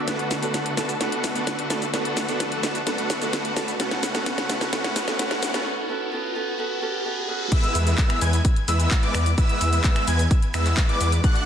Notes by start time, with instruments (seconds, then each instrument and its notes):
Already playing: string section D3 B3
0.07 supersaw synth A3 D4 F#4 B4 F#5, steel-string acoustic guitar B3 D4 F#4 A4, string section A4, snare, closed hi-hat, riser, shaker
0.19 closed hi-hat
0.31 detuned saw bass B1, snare, open hi-hat, shaker
0.42 supersaw synth A3 D4 F#4 B4 F#5, steel-string acoustic guitar B3 D4 F#4 A4, closed hi-hat, shaker
0.54 snare, closed hi-hat, shaker
0.66 closed hi-hat
0.77 detuned saw bass B1, supersaw synth A3 D4 F#4 B4 A5, steel-string acoustic guitar B3 D4 F#4 A4, snare, open hi-hat, shaker
0.89 closed hi-hat, shaker
1.00 supersaw synth A3 D4 F#4 B4 F#5, steel-string acoustic guitar B3 D4 F#4 A4, snare, closed hi-hat, shaker
1.12 closed hi-hat
1.24 detuned saw bass B1, snare, open hi-hat, shaker
1.35 supersaw synth A3 D4 F#4 B4 F#5, steel-string acoustic guitar B3 D4 F#4 A4, closed hi-hat, shaker
1.47 snare, closed hi-hat, shaker
1.59 closed hi-hat
1.70 detuned saw bass B1, supersaw synth A3 D4 F#4 B4 A5, steel-string acoustic guitar B3 D4 F#4 A4, snare, open hi-hat, shaker
1.82 closed hi-hat, shaker
1.93 supersaw synth A3 D4 F#4 B4 F#5, steel-string acoustic guitar B3 D4 F#4 A4, snare, closed hi-hat, shaker
2.05 closed hi-hat
2.17 detuned saw bass B1, snare, open hi-hat, shaker
2.28 supersaw synth A3 D4 F#4 B4 F#5, steel-string acoustic guitar B3 D4 F#4 A4, closed hi-hat, shaker
2.40 snare, closed hi-hat, shaker
2.52 closed hi-hat
2.63 detuned saw bass B1, supersaw synth A3 D4 F#4 B4 A5, steel-string acoustic guitar B3 D4 F#4 A4, snare, open hi-hat, shaker
2.75 closed hi-hat, shaker
2.86 supersaw synth A3 D4 F#4 B4 F#5, steel-string acoustic guitar B3 D4 F#4 A4, snare, closed hi-hat, shaker
2.98 closed hi-hat
3.10 detuned saw bass B1, snare, open hi-hat, shaker
3.21 supersaw synth A3 D4 F#4 B4 F#5, steel-string acoustic guitar B3 D4 F#4 A4, closed hi-hat, shaker
3.33 snare, closed hi-hat, shaker
3.45 closed hi-hat
3.56 detuned saw bass B1, supersaw synth A3 D4 F#4 B4 A5, steel-string acoustic guitar B3 D4 F#4 A4, snare, open hi-hat, shaker
3.68 closed hi-hat, shaker
3.79 string section C#3, supersaw synth A3 C#4 F#4 B4 F#5, steel-string acoustic guitar B3 C#4 F#4 A4, snare, closed hi-hat, shaker
3.91 snare, closed hi-hat
4.03 detuned saw bass A1, snare, open hi-hat, shaker
4.14 supersaw synth A3 C#4 F#4 B4 F#5, steel-string acoustic guitar B3 C#4 F#4 A4, snare, closed hi-hat, shaker
4.25 supersaw synth A3 C#4 F#4 B4 F#5, steel-string acoustic guitar B3 C#4 F#4 A4, snare, closed hi-hat, shaker
4.38 snare, closed hi-hat
4.49 detuned saw bass A1, snare, open hi-hat, shaker
4.60 supersaw synth A3 C#4 F#4 B4 F#5, steel-string acoustic guitar B3 C#4 F#4 A4, snare, closed hi-hat, shaker
4.72 supersaw synth A3 C#4 F#4 B4 F#5, steel-string acoustic guitar B3 C#4 F#4 A4, snare, closed hi-hat, shaker
4.84 snare, closed hi-hat
4.96 detuned saw bass A1, snare, open hi-hat, shaker
5.07 supersaw synth A3 C#4 F#4 B4 F#5, steel-string acoustic guitar B3 C#4 F#4 A4, snare, closed hi-hat, shaker
5.19 supersaw synth A3 C#4 F#4 B4 F#5, steel-string acoustic guitar B3 C#4 F#4 A4, snare, closed hi-hat, shaker
5.31 snare, closed hi-hat
5.42 detuned saw bass A1, snare, open hi-hat, shaker
5.53 supersaw synth A3 C#4 F#4 B4 F#5, steel-string acoustic guitar B3 C#4 F#4 A4, snare, closed hi-hat, shaker
5.65 steel-string acoustic guitar B3 C#4 F#4 A4
5.88 steel-string acoustic guitar B3 C#4 F#4 A4
6.12 steel-string acoustic guitar B3 C#4 F#4 A4
6.35 steel-string acoustic guitar B3 C#4 F#4 A4
6.58 steel-string acoustic guitar B3 C#4 F#4 A4
6.81 steel-string acoustic guitar B3 C#4 F#4 A4
7.04 steel-string acoustic guitar B3 C#4 F#4 A4
7.28 steel-string acoustic guitar B3 C#4 F#4 A4
7.52 supersaw synth G#3 B3 E4 B4 E5, analog synth lead E6, kick, closed hi-hat, crash, shaker
7.63 closed hi-hat
7.75 detuned saw bass E2, open hi-hat, shaker
7.87 supersaw synth G#3 B3 E4 B4 E5, analog synth lead E6, closed hi-hat, shaker
7.98 kick, clap, closed hi-hat, shaker
8.10 finger snap, closed hi-hat
8.21 detuned saw bass E2, supersaw synth G#3 B3 E4 B4 G#5, analog synth lead G#6, open hi-hat, shaker
8.33 closed hi-hat, shaker
8.45 kick, closed hi-hat, shaker
8.56 closed hi-hat
8.68 detuned saw bass E2, supersaw synth G#3 B3 E4 B4 E5, analog synth lead E6, open hi-hat, shaker
8.80 closed hi-hat, shaker
8.91 kick, clap, closed hi-hat, shaker
9.03 supersaw synth G#3 B3 E4 B4 D5, analog synth lead D6, closed hi-hat
9.15 detuned saw bass E2, finger snap, open hi-hat, shaker
9.26 closed hi-hat, shaker
9.38 supersaw synth G#3 B3 E4 B4 E5, analog synth lead E6, kick, closed hi-hat, shaker
9.49 closed hi-hat
9.61 detuned saw bass E2, open hi-hat, shaker
9.73 supersaw synth G#3 B3 E4 B4 E5, analog synth lead E6, closed hi-hat, shaker
9.84 kick, clap, closed hi-hat, shaker
9.96 finger snap, closed hi-hat
10.08 detuned saw bass E2, supersaw synth G#3 B3 E4 B4 G#5, analog synth lead G#6, open hi-hat, shaker
10.19 closed hi-hat, shaker
10.31 kick, closed hi-hat, shaker
10.42 closed hi-hat
10.54 detuned saw bass E2, supersaw synth G#3 B3 E4 B4 E5, analog synth lead E6, finger snap, open hi-hat, shaker
10.65 clap, closed hi-hat, shaker
10.77 kick, clap, closed hi-hat, shaker
10.89 supersaw synth G#3 B3 E4 B4 D5, analog synth lead D6, closed hi-hat
11.01 detuned saw bass E2, open hi-hat, shaker
11.12 closed hi-hat, shaker
11.24 supersaw synth A3 D4 F#4 D5 F#5, analog synth lead F#6, kick, closed hi-hat, shaker
11.36 closed hi-hat